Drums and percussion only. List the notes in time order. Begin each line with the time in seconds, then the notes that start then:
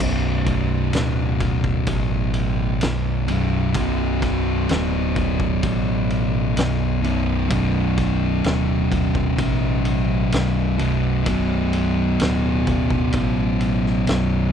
0.00 kick, crash
0.47 kick, ride
0.93 snare, ride
1.40 kick, ride
1.64 kick
1.87 kick, ride
2.34 ride
2.81 snare, ride
3.28 ride
3.74 kick, ride
4.22 kick, snare, ride
4.69 snare, ride
5.16 kick, ride
5.40 kick
5.63 kick, ride
6.10 ride
6.57 snare, ride
7.04 ride
7.51 kick, ride
7.98 kick, snare, ride
8.44 snare, ride
8.92 kick, ride
9.15 kick
9.38 kick, ride
9.85 ride
10.32 snare, ride
10.79 ride
11.26 kick, ride
11.73 ride
12.20 snare, ride
12.67 kick, ride
12.90 kick
13.13 kick, ride
13.61 ride
13.86 snare
14.07 snare, ride